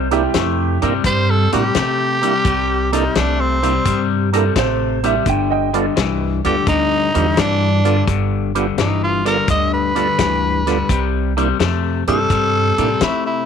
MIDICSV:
0, 0, Header, 1, 7, 480
1, 0, Start_track
1, 0, Key_signature, 0, "major"
1, 0, Tempo, 703400
1, 1674, Time_signature, 4, 2, 24, 8
1, 9182, End_track
2, 0, Start_track
2, 0, Title_t, "Upright piano"
2, 0, Program_c, 0, 0
2, 0, Note_on_c, 0, 72, 79
2, 73, Note_off_c, 0, 72, 0
2, 86, Note_on_c, 0, 64, 76
2, 87, Note_on_c, 0, 67, 92
2, 616, Note_off_c, 0, 64, 0
2, 627, Note_off_c, 0, 67, 0
2, 2972, Note_on_c, 0, 69, 67
2, 3118, Note_off_c, 0, 69, 0
2, 3131, Note_on_c, 0, 72, 73
2, 3433, Note_off_c, 0, 72, 0
2, 3450, Note_on_c, 0, 76, 75
2, 3598, Note_off_c, 0, 76, 0
2, 3612, Note_on_c, 0, 79, 82
2, 3754, Note_off_c, 0, 79, 0
2, 3757, Note_on_c, 0, 75, 67
2, 3765, Note_on_c, 0, 79, 73
2, 4209, Note_off_c, 0, 75, 0
2, 4225, Note_off_c, 0, 79, 0
2, 9182, End_track
3, 0, Start_track
3, 0, Title_t, "Tenor saxophone"
3, 0, Program_c, 1, 66
3, 722, Note_on_c, 1, 72, 87
3, 885, Note_on_c, 1, 69, 84
3, 896, Note_off_c, 1, 72, 0
3, 1035, Note_off_c, 1, 69, 0
3, 1046, Note_on_c, 1, 67, 88
3, 1972, Note_off_c, 1, 67, 0
3, 2000, Note_on_c, 1, 63, 71
3, 2164, Note_on_c, 1, 62, 71
3, 2174, Note_off_c, 1, 63, 0
3, 2322, Note_on_c, 1, 60, 71
3, 2332, Note_off_c, 1, 62, 0
3, 2784, Note_off_c, 1, 60, 0
3, 4404, Note_on_c, 1, 67, 80
3, 4555, Note_off_c, 1, 67, 0
3, 4561, Note_on_c, 1, 63, 89
3, 5046, Note_on_c, 1, 62, 85
3, 5056, Note_off_c, 1, 63, 0
3, 5507, Note_off_c, 1, 62, 0
3, 6005, Note_on_c, 1, 63, 69
3, 6156, Note_off_c, 1, 63, 0
3, 6165, Note_on_c, 1, 65, 69
3, 6315, Note_off_c, 1, 65, 0
3, 6324, Note_on_c, 1, 70, 78
3, 6475, Note_off_c, 1, 70, 0
3, 6485, Note_on_c, 1, 75, 81
3, 6636, Note_off_c, 1, 75, 0
3, 6641, Note_on_c, 1, 71, 84
3, 7571, Note_off_c, 1, 71, 0
3, 8245, Note_on_c, 1, 69, 98
3, 8891, Note_on_c, 1, 64, 82
3, 8901, Note_off_c, 1, 69, 0
3, 9038, Note_off_c, 1, 64, 0
3, 9049, Note_on_c, 1, 64, 72
3, 9182, Note_off_c, 1, 64, 0
3, 9182, End_track
4, 0, Start_track
4, 0, Title_t, "Tonewheel organ"
4, 0, Program_c, 2, 16
4, 76, Note_on_c, 2, 58, 84
4, 78, Note_on_c, 2, 62, 72
4, 79, Note_on_c, 2, 64, 79
4, 84, Note_on_c, 2, 67, 92
4, 155, Note_off_c, 2, 58, 0
4, 157, Note_off_c, 2, 62, 0
4, 157, Note_off_c, 2, 64, 0
4, 159, Note_off_c, 2, 67, 0
4, 560, Note_on_c, 2, 58, 76
4, 561, Note_on_c, 2, 62, 70
4, 564, Note_on_c, 2, 64, 75
4, 568, Note_on_c, 2, 70, 91
4, 637, Note_off_c, 2, 58, 0
4, 638, Note_off_c, 2, 62, 0
4, 639, Note_off_c, 2, 64, 0
4, 641, Note_off_c, 2, 70, 0
4, 1042, Note_on_c, 2, 58, 66
4, 1043, Note_on_c, 2, 62, 63
4, 1045, Note_on_c, 2, 64, 64
4, 1046, Note_on_c, 2, 67, 75
4, 1118, Note_off_c, 2, 58, 0
4, 1119, Note_off_c, 2, 62, 0
4, 1120, Note_off_c, 2, 64, 0
4, 1120, Note_off_c, 2, 67, 0
4, 1511, Note_on_c, 2, 58, 68
4, 1516, Note_on_c, 2, 62, 57
4, 1519, Note_on_c, 2, 64, 60
4, 1522, Note_on_c, 2, 67, 75
4, 1593, Note_off_c, 2, 58, 0
4, 1595, Note_off_c, 2, 62, 0
4, 1596, Note_off_c, 2, 64, 0
4, 1598, Note_off_c, 2, 67, 0
4, 1995, Note_on_c, 2, 58, 73
4, 1998, Note_on_c, 2, 62, 55
4, 2000, Note_on_c, 2, 64, 66
4, 2002, Note_on_c, 2, 69, 77
4, 2074, Note_off_c, 2, 58, 0
4, 2076, Note_off_c, 2, 62, 0
4, 2077, Note_off_c, 2, 64, 0
4, 2078, Note_off_c, 2, 69, 0
4, 2474, Note_on_c, 2, 58, 64
4, 2475, Note_on_c, 2, 62, 57
4, 2478, Note_on_c, 2, 64, 63
4, 2480, Note_on_c, 2, 67, 67
4, 2554, Note_off_c, 2, 58, 0
4, 2554, Note_off_c, 2, 62, 0
4, 2556, Note_off_c, 2, 64, 0
4, 2557, Note_off_c, 2, 67, 0
4, 2953, Note_on_c, 2, 58, 66
4, 2957, Note_on_c, 2, 62, 57
4, 2959, Note_on_c, 2, 64, 61
4, 2961, Note_on_c, 2, 70, 72
4, 3033, Note_off_c, 2, 58, 0
4, 3036, Note_off_c, 2, 62, 0
4, 3036, Note_off_c, 2, 64, 0
4, 3037, Note_off_c, 2, 70, 0
4, 3435, Note_on_c, 2, 58, 69
4, 3438, Note_on_c, 2, 62, 73
4, 3441, Note_on_c, 2, 64, 69
4, 3444, Note_on_c, 2, 67, 80
4, 3515, Note_off_c, 2, 58, 0
4, 3516, Note_off_c, 2, 62, 0
4, 3518, Note_off_c, 2, 64, 0
4, 3519, Note_off_c, 2, 67, 0
4, 3916, Note_on_c, 2, 59, 80
4, 3918, Note_on_c, 2, 62, 75
4, 3922, Note_on_c, 2, 65, 70
4, 3926, Note_on_c, 2, 69, 94
4, 3995, Note_off_c, 2, 59, 0
4, 3996, Note_off_c, 2, 62, 0
4, 3998, Note_off_c, 2, 65, 0
4, 4000, Note_off_c, 2, 69, 0
4, 4399, Note_on_c, 2, 62, 62
4, 4400, Note_on_c, 2, 59, 63
4, 4403, Note_on_c, 2, 65, 58
4, 4406, Note_on_c, 2, 69, 67
4, 4477, Note_off_c, 2, 59, 0
4, 4477, Note_off_c, 2, 62, 0
4, 4479, Note_off_c, 2, 65, 0
4, 4480, Note_off_c, 2, 69, 0
4, 4875, Note_on_c, 2, 59, 68
4, 4877, Note_on_c, 2, 62, 63
4, 4881, Note_on_c, 2, 65, 60
4, 4883, Note_on_c, 2, 67, 78
4, 4955, Note_off_c, 2, 59, 0
4, 4956, Note_off_c, 2, 62, 0
4, 4958, Note_off_c, 2, 65, 0
4, 4959, Note_off_c, 2, 67, 0
4, 5354, Note_on_c, 2, 59, 64
4, 5355, Note_on_c, 2, 62, 58
4, 5357, Note_on_c, 2, 65, 62
4, 5360, Note_on_c, 2, 69, 72
4, 5434, Note_off_c, 2, 59, 0
4, 5435, Note_off_c, 2, 62, 0
4, 5436, Note_off_c, 2, 65, 0
4, 5438, Note_off_c, 2, 69, 0
4, 5836, Note_on_c, 2, 59, 74
4, 5836, Note_on_c, 2, 62, 70
4, 5840, Note_on_c, 2, 65, 75
4, 5843, Note_on_c, 2, 67, 88
4, 5915, Note_off_c, 2, 59, 0
4, 5916, Note_off_c, 2, 62, 0
4, 5918, Note_off_c, 2, 65, 0
4, 5919, Note_off_c, 2, 67, 0
4, 6314, Note_on_c, 2, 59, 69
4, 6317, Note_on_c, 2, 62, 58
4, 6319, Note_on_c, 2, 65, 62
4, 6321, Note_on_c, 2, 69, 70
4, 6395, Note_off_c, 2, 59, 0
4, 6396, Note_off_c, 2, 62, 0
4, 6397, Note_off_c, 2, 65, 0
4, 6398, Note_off_c, 2, 69, 0
4, 6792, Note_on_c, 2, 59, 74
4, 6792, Note_on_c, 2, 62, 64
4, 6796, Note_on_c, 2, 65, 65
4, 6800, Note_on_c, 2, 69, 76
4, 6873, Note_off_c, 2, 59, 0
4, 6874, Note_off_c, 2, 62, 0
4, 6876, Note_off_c, 2, 65, 0
4, 6878, Note_off_c, 2, 69, 0
4, 7278, Note_on_c, 2, 59, 69
4, 7279, Note_on_c, 2, 62, 60
4, 7283, Note_on_c, 2, 65, 63
4, 7285, Note_on_c, 2, 69, 75
4, 7356, Note_off_c, 2, 59, 0
4, 7357, Note_off_c, 2, 62, 0
4, 7359, Note_off_c, 2, 65, 0
4, 7360, Note_off_c, 2, 69, 0
4, 7758, Note_on_c, 2, 58, 83
4, 7760, Note_on_c, 2, 62, 74
4, 7761, Note_on_c, 2, 64, 76
4, 7765, Note_on_c, 2, 67, 88
4, 7836, Note_off_c, 2, 58, 0
4, 7838, Note_off_c, 2, 62, 0
4, 7838, Note_off_c, 2, 64, 0
4, 7840, Note_off_c, 2, 67, 0
4, 8240, Note_on_c, 2, 58, 67
4, 8242, Note_on_c, 2, 62, 60
4, 8243, Note_on_c, 2, 64, 58
4, 8246, Note_on_c, 2, 67, 81
4, 8317, Note_off_c, 2, 58, 0
4, 8318, Note_off_c, 2, 62, 0
4, 8319, Note_off_c, 2, 64, 0
4, 8320, Note_off_c, 2, 67, 0
4, 8719, Note_on_c, 2, 58, 65
4, 8722, Note_on_c, 2, 62, 62
4, 8725, Note_on_c, 2, 64, 64
4, 8726, Note_on_c, 2, 67, 80
4, 8797, Note_off_c, 2, 58, 0
4, 8798, Note_off_c, 2, 62, 0
4, 8800, Note_off_c, 2, 64, 0
4, 8801, Note_off_c, 2, 67, 0
4, 9182, End_track
5, 0, Start_track
5, 0, Title_t, "Clean electric guitar"
5, 0, Program_c, 3, 27
5, 79, Note_on_c, 3, 48, 56
5, 83, Note_on_c, 3, 55, 71
5, 218, Note_off_c, 3, 48, 0
5, 220, Note_off_c, 3, 55, 0
5, 232, Note_on_c, 3, 48, 81
5, 234, Note_on_c, 3, 57, 82
5, 527, Note_off_c, 3, 48, 0
5, 528, Note_off_c, 3, 57, 0
5, 560, Note_on_c, 3, 48, 74
5, 564, Note_on_c, 3, 55, 84
5, 698, Note_off_c, 3, 48, 0
5, 700, Note_off_c, 3, 55, 0
5, 713, Note_on_c, 3, 48, 70
5, 720, Note_on_c, 3, 55, 86
5, 1007, Note_off_c, 3, 48, 0
5, 1010, Note_off_c, 3, 55, 0
5, 1040, Note_on_c, 3, 48, 62
5, 1043, Note_on_c, 3, 55, 75
5, 1178, Note_off_c, 3, 48, 0
5, 1180, Note_off_c, 3, 55, 0
5, 1193, Note_on_c, 3, 48, 65
5, 1196, Note_on_c, 3, 57, 83
5, 1487, Note_off_c, 3, 48, 0
5, 1489, Note_off_c, 3, 57, 0
5, 1521, Note_on_c, 3, 48, 58
5, 1523, Note_on_c, 3, 55, 75
5, 1659, Note_off_c, 3, 48, 0
5, 1660, Note_off_c, 3, 55, 0
5, 1676, Note_on_c, 3, 48, 74
5, 1677, Note_on_c, 3, 55, 74
5, 1969, Note_off_c, 3, 48, 0
5, 1969, Note_off_c, 3, 55, 0
5, 1997, Note_on_c, 3, 48, 61
5, 2001, Note_on_c, 3, 55, 63
5, 2137, Note_off_c, 3, 48, 0
5, 2139, Note_off_c, 3, 55, 0
5, 2153, Note_on_c, 3, 48, 71
5, 2156, Note_on_c, 3, 57, 74
5, 2447, Note_off_c, 3, 48, 0
5, 2449, Note_off_c, 3, 57, 0
5, 2480, Note_on_c, 3, 48, 69
5, 2482, Note_on_c, 3, 55, 75
5, 2618, Note_off_c, 3, 48, 0
5, 2619, Note_off_c, 3, 55, 0
5, 2627, Note_on_c, 3, 48, 69
5, 2631, Note_on_c, 3, 55, 82
5, 2924, Note_off_c, 3, 48, 0
5, 2926, Note_off_c, 3, 55, 0
5, 2958, Note_on_c, 3, 48, 57
5, 2959, Note_on_c, 3, 55, 68
5, 3097, Note_off_c, 3, 48, 0
5, 3098, Note_off_c, 3, 55, 0
5, 3109, Note_on_c, 3, 48, 70
5, 3111, Note_on_c, 3, 57, 70
5, 3405, Note_off_c, 3, 48, 0
5, 3406, Note_off_c, 3, 57, 0
5, 3438, Note_on_c, 3, 48, 62
5, 3441, Note_on_c, 3, 55, 74
5, 3578, Note_off_c, 3, 48, 0
5, 3579, Note_off_c, 3, 55, 0
5, 3588, Note_on_c, 3, 43, 70
5, 3590, Note_on_c, 3, 50, 81
5, 3885, Note_off_c, 3, 43, 0
5, 3886, Note_off_c, 3, 50, 0
5, 3913, Note_on_c, 3, 43, 56
5, 3915, Note_on_c, 3, 50, 66
5, 4055, Note_off_c, 3, 43, 0
5, 4056, Note_off_c, 3, 50, 0
5, 4068, Note_on_c, 3, 43, 67
5, 4071, Note_on_c, 3, 52, 80
5, 4365, Note_off_c, 3, 43, 0
5, 4367, Note_off_c, 3, 52, 0
5, 4399, Note_on_c, 3, 43, 63
5, 4402, Note_on_c, 3, 50, 75
5, 4538, Note_off_c, 3, 43, 0
5, 4540, Note_off_c, 3, 50, 0
5, 4548, Note_on_c, 3, 43, 81
5, 4554, Note_on_c, 3, 50, 77
5, 4845, Note_off_c, 3, 43, 0
5, 4848, Note_off_c, 3, 50, 0
5, 4877, Note_on_c, 3, 43, 71
5, 4880, Note_on_c, 3, 50, 68
5, 5017, Note_off_c, 3, 43, 0
5, 5019, Note_off_c, 3, 50, 0
5, 5029, Note_on_c, 3, 43, 75
5, 5033, Note_on_c, 3, 52, 69
5, 5326, Note_off_c, 3, 43, 0
5, 5328, Note_off_c, 3, 52, 0
5, 5358, Note_on_c, 3, 43, 66
5, 5362, Note_on_c, 3, 50, 73
5, 5498, Note_off_c, 3, 43, 0
5, 5500, Note_off_c, 3, 50, 0
5, 5512, Note_on_c, 3, 43, 71
5, 5517, Note_on_c, 3, 50, 79
5, 5807, Note_off_c, 3, 43, 0
5, 5810, Note_off_c, 3, 50, 0
5, 5837, Note_on_c, 3, 43, 61
5, 5840, Note_on_c, 3, 50, 73
5, 5978, Note_off_c, 3, 43, 0
5, 5979, Note_off_c, 3, 50, 0
5, 5990, Note_on_c, 3, 43, 72
5, 5995, Note_on_c, 3, 52, 79
5, 6286, Note_off_c, 3, 43, 0
5, 6289, Note_off_c, 3, 52, 0
5, 6315, Note_on_c, 3, 43, 71
5, 6317, Note_on_c, 3, 50, 86
5, 6457, Note_off_c, 3, 43, 0
5, 6457, Note_off_c, 3, 50, 0
5, 6469, Note_on_c, 3, 43, 70
5, 6474, Note_on_c, 3, 50, 83
5, 6766, Note_off_c, 3, 43, 0
5, 6769, Note_off_c, 3, 50, 0
5, 6797, Note_on_c, 3, 43, 57
5, 6800, Note_on_c, 3, 50, 72
5, 6937, Note_off_c, 3, 43, 0
5, 6939, Note_off_c, 3, 50, 0
5, 6951, Note_on_c, 3, 43, 82
5, 6954, Note_on_c, 3, 52, 70
5, 7247, Note_off_c, 3, 43, 0
5, 7248, Note_off_c, 3, 52, 0
5, 7282, Note_on_c, 3, 43, 65
5, 7286, Note_on_c, 3, 50, 79
5, 7420, Note_off_c, 3, 43, 0
5, 7422, Note_off_c, 3, 50, 0
5, 7434, Note_on_c, 3, 48, 71
5, 7437, Note_on_c, 3, 55, 84
5, 7728, Note_off_c, 3, 48, 0
5, 7730, Note_off_c, 3, 55, 0
5, 7759, Note_on_c, 3, 48, 65
5, 7764, Note_on_c, 3, 55, 73
5, 7898, Note_off_c, 3, 48, 0
5, 7901, Note_off_c, 3, 55, 0
5, 7912, Note_on_c, 3, 48, 71
5, 7914, Note_on_c, 3, 57, 83
5, 8207, Note_off_c, 3, 48, 0
5, 8208, Note_off_c, 3, 57, 0
5, 8245, Note_on_c, 3, 48, 66
5, 8245, Note_on_c, 3, 55, 72
5, 8381, Note_off_c, 3, 48, 0
5, 8381, Note_off_c, 3, 55, 0
5, 8392, Note_on_c, 3, 48, 74
5, 8397, Note_on_c, 3, 55, 77
5, 8687, Note_off_c, 3, 48, 0
5, 8690, Note_off_c, 3, 55, 0
5, 8724, Note_on_c, 3, 48, 64
5, 8728, Note_on_c, 3, 55, 69
5, 8861, Note_off_c, 3, 48, 0
5, 8863, Note_off_c, 3, 55, 0
5, 8879, Note_on_c, 3, 48, 67
5, 8882, Note_on_c, 3, 57, 73
5, 9170, Note_off_c, 3, 48, 0
5, 9172, Note_off_c, 3, 57, 0
5, 9182, End_track
6, 0, Start_track
6, 0, Title_t, "Upright bass"
6, 0, Program_c, 4, 32
6, 0, Note_on_c, 4, 36, 80
6, 169, Note_off_c, 4, 36, 0
6, 236, Note_on_c, 4, 41, 87
6, 518, Note_off_c, 4, 41, 0
6, 563, Note_on_c, 4, 43, 80
6, 695, Note_off_c, 4, 43, 0
6, 712, Note_on_c, 4, 43, 88
6, 995, Note_off_c, 4, 43, 0
6, 1047, Note_on_c, 4, 45, 72
6, 1177, Note_off_c, 4, 45, 0
6, 1197, Note_on_c, 4, 48, 77
6, 1611, Note_off_c, 4, 48, 0
6, 1670, Note_on_c, 4, 36, 84
6, 2088, Note_off_c, 4, 36, 0
6, 2153, Note_on_c, 4, 36, 81
6, 2569, Note_off_c, 4, 36, 0
6, 2632, Note_on_c, 4, 43, 79
6, 3049, Note_off_c, 4, 43, 0
6, 3111, Note_on_c, 4, 33, 73
6, 3528, Note_off_c, 4, 33, 0
6, 3592, Note_on_c, 4, 31, 81
6, 4009, Note_off_c, 4, 31, 0
6, 4076, Note_on_c, 4, 36, 80
6, 4358, Note_off_c, 4, 36, 0
6, 4401, Note_on_c, 4, 38, 79
6, 4534, Note_off_c, 4, 38, 0
6, 4551, Note_on_c, 4, 38, 77
6, 4835, Note_off_c, 4, 38, 0
6, 4881, Note_on_c, 4, 40, 76
6, 5014, Note_off_c, 4, 40, 0
6, 5036, Note_on_c, 4, 43, 85
6, 5451, Note_off_c, 4, 43, 0
6, 5510, Note_on_c, 4, 31, 83
6, 5928, Note_off_c, 4, 31, 0
6, 5991, Note_on_c, 4, 31, 81
6, 6408, Note_off_c, 4, 31, 0
6, 6469, Note_on_c, 4, 38, 87
6, 6888, Note_off_c, 4, 38, 0
6, 6953, Note_on_c, 4, 38, 81
6, 7369, Note_off_c, 4, 38, 0
6, 7434, Note_on_c, 4, 36, 81
6, 7850, Note_off_c, 4, 36, 0
6, 7912, Note_on_c, 4, 41, 84
6, 8196, Note_off_c, 4, 41, 0
6, 8241, Note_on_c, 4, 43, 83
6, 8374, Note_off_c, 4, 43, 0
6, 8396, Note_on_c, 4, 43, 84
6, 8678, Note_off_c, 4, 43, 0
6, 8722, Note_on_c, 4, 45, 71
6, 8855, Note_off_c, 4, 45, 0
6, 8878, Note_on_c, 4, 48, 77
6, 9182, Note_off_c, 4, 48, 0
6, 9182, End_track
7, 0, Start_track
7, 0, Title_t, "Drums"
7, 77, Note_on_c, 9, 42, 47
7, 145, Note_off_c, 9, 42, 0
7, 231, Note_on_c, 9, 42, 71
7, 234, Note_on_c, 9, 38, 97
7, 300, Note_off_c, 9, 42, 0
7, 302, Note_off_c, 9, 38, 0
7, 559, Note_on_c, 9, 42, 49
7, 627, Note_off_c, 9, 42, 0
7, 711, Note_on_c, 9, 36, 105
7, 712, Note_on_c, 9, 42, 80
7, 780, Note_off_c, 9, 36, 0
7, 780, Note_off_c, 9, 42, 0
7, 1040, Note_on_c, 9, 42, 55
7, 1109, Note_off_c, 9, 42, 0
7, 1191, Note_on_c, 9, 42, 78
7, 1194, Note_on_c, 9, 38, 98
7, 1260, Note_off_c, 9, 42, 0
7, 1262, Note_off_c, 9, 38, 0
7, 1520, Note_on_c, 9, 42, 58
7, 1588, Note_off_c, 9, 42, 0
7, 1670, Note_on_c, 9, 42, 73
7, 1671, Note_on_c, 9, 36, 108
7, 1738, Note_off_c, 9, 42, 0
7, 1739, Note_off_c, 9, 36, 0
7, 1999, Note_on_c, 9, 42, 61
7, 2067, Note_off_c, 9, 42, 0
7, 2152, Note_on_c, 9, 42, 72
7, 2154, Note_on_c, 9, 38, 91
7, 2220, Note_off_c, 9, 42, 0
7, 2223, Note_off_c, 9, 38, 0
7, 2479, Note_on_c, 9, 42, 55
7, 2547, Note_off_c, 9, 42, 0
7, 2630, Note_on_c, 9, 42, 82
7, 2631, Note_on_c, 9, 36, 108
7, 2698, Note_off_c, 9, 42, 0
7, 2699, Note_off_c, 9, 36, 0
7, 2957, Note_on_c, 9, 42, 57
7, 3026, Note_off_c, 9, 42, 0
7, 3110, Note_on_c, 9, 36, 80
7, 3110, Note_on_c, 9, 42, 77
7, 3113, Note_on_c, 9, 38, 101
7, 3179, Note_off_c, 9, 36, 0
7, 3179, Note_off_c, 9, 42, 0
7, 3181, Note_off_c, 9, 38, 0
7, 3436, Note_on_c, 9, 42, 57
7, 3505, Note_off_c, 9, 42, 0
7, 3588, Note_on_c, 9, 42, 76
7, 3590, Note_on_c, 9, 36, 97
7, 3656, Note_off_c, 9, 42, 0
7, 3658, Note_off_c, 9, 36, 0
7, 3916, Note_on_c, 9, 42, 53
7, 3984, Note_off_c, 9, 42, 0
7, 4072, Note_on_c, 9, 42, 70
7, 4074, Note_on_c, 9, 38, 97
7, 4140, Note_off_c, 9, 42, 0
7, 4143, Note_off_c, 9, 38, 0
7, 4399, Note_on_c, 9, 42, 54
7, 4467, Note_off_c, 9, 42, 0
7, 4550, Note_on_c, 9, 42, 76
7, 4551, Note_on_c, 9, 36, 113
7, 4618, Note_off_c, 9, 42, 0
7, 4619, Note_off_c, 9, 36, 0
7, 4878, Note_on_c, 9, 42, 53
7, 4947, Note_off_c, 9, 42, 0
7, 5029, Note_on_c, 9, 42, 81
7, 5032, Note_on_c, 9, 38, 113
7, 5097, Note_off_c, 9, 42, 0
7, 5100, Note_off_c, 9, 38, 0
7, 5357, Note_on_c, 9, 42, 54
7, 5425, Note_off_c, 9, 42, 0
7, 5510, Note_on_c, 9, 36, 105
7, 5510, Note_on_c, 9, 42, 76
7, 5578, Note_off_c, 9, 42, 0
7, 5579, Note_off_c, 9, 36, 0
7, 5837, Note_on_c, 9, 42, 59
7, 5905, Note_off_c, 9, 42, 0
7, 5990, Note_on_c, 9, 42, 66
7, 5993, Note_on_c, 9, 38, 90
7, 6058, Note_off_c, 9, 42, 0
7, 6061, Note_off_c, 9, 38, 0
7, 6318, Note_on_c, 9, 42, 58
7, 6387, Note_off_c, 9, 42, 0
7, 6468, Note_on_c, 9, 42, 82
7, 6470, Note_on_c, 9, 36, 107
7, 6536, Note_off_c, 9, 42, 0
7, 6539, Note_off_c, 9, 36, 0
7, 6796, Note_on_c, 9, 42, 53
7, 6864, Note_off_c, 9, 42, 0
7, 6951, Note_on_c, 9, 42, 82
7, 6952, Note_on_c, 9, 36, 74
7, 6954, Note_on_c, 9, 38, 115
7, 7020, Note_off_c, 9, 36, 0
7, 7020, Note_off_c, 9, 42, 0
7, 7022, Note_off_c, 9, 38, 0
7, 7281, Note_on_c, 9, 42, 59
7, 7284, Note_on_c, 9, 38, 31
7, 7349, Note_off_c, 9, 42, 0
7, 7352, Note_off_c, 9, 38, 0
7, 7433, Note_on_c, 9, 36, 98
7, 7435, Note_on_c, 9, 42, 84
7, 7502, Note_off_c, 9, 36, 0
7, 7504, Note_off_c, 9, 42, 0
7, 7762, Note_on_c, 9, 42, 53
7, 7830, Note_off_c, 9, 42, 0
7, 7916, Note_on_c, 9, 42, 65
7, 7918, Note_on_c, 9, 38, 94
7, 7984, Note_off_c, 9, 42, 0
7, 7987, Note_off_c, 9, 38, 0
7, 8239, Note_on_c, 9, 42, 49
7, 8307, Note_off_c, 9, 42, 0
7, 8394, Note_on_c, 9, 36, 101
7, 8395, Note_on_c, 9, 42, 72
7, 8462, Note_off_c, 9, 36, 0
7, 8463, Note_off_c, 9, 42, 0
7, 8721, Note_on_c, 9, 42, 49
7, 8790, Note_off_c, 9, 42, 0
7, 8875, Note_on_c, 9, 42, 74
7, 8878, Note_on_c, 9, 38, 108
7, 8944, Note_off_c, 9, 42, 0
7, 8946, Note_off_c, 9, 38, 0
7, 9182, End_track
0, 0, End_of_file